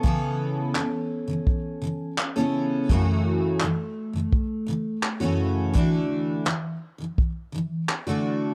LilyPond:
<<
  \new Staff \with { instrumentName = "Steel-string acoustic guitar" } { \clef bass \time 4/4 \key a \major \tempo 4 = 84 <cis e b cis' a'>4 <cis e>8 r16 <cis e>8 r16 <cis e>8 r16 <cis e b cis' a'>8. | <fis, cis e a cis' fis'>4 <fis, cis e>8 r16 <fis, cis e>8 r16 <fis, cis e>8 r16 <fis, cis e a cis' fis'>8. | <d e a d' fis'>4 <d e>8 r16 <d e>8 r16 <d e>8 r16 <d e a d' fis'>8. | }
  \new DrumStaff \with { instrumentName = "Drums" } \drummode { \time 4/4 bd4 hc4 bd4 hc4 | bd4 hc4 bd4 hc4 | bd4 hc4 bd4 hc4 | }
>>